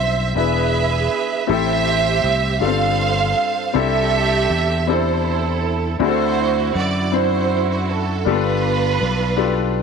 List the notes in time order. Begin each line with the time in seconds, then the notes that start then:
Already playing: B1 G2 C4 D4 F4 G4 C5 E5
0.35 E1 E3 B3 D4 E4 G#4 B4 E5
1.47 A1 A2 A3 C4 E4 G4 A4 C5 E5
2.24 C2
2.60 G1 G2 B3 D4 F4 G4 A4 C5 F5
2.66 C4
3.73 C2 C3 C4 D4 E4 G4 A4 E5
4.50 E2
4.87 C4 D4 E4 G4 A4 C5
5.99 D2 D3 C4 D4 E4 F#4 G#4 C5
6.08 A4
6.75 F#2 D5
7.12 C4 D4 E4 F#4 C5
7.71 C5
7.90 A4
8.25 G1 G2 A#3 D4 F4 G4 A4
8.29 B3 B4
9.01 B1
9.37 B3 D4 F4 G4 A4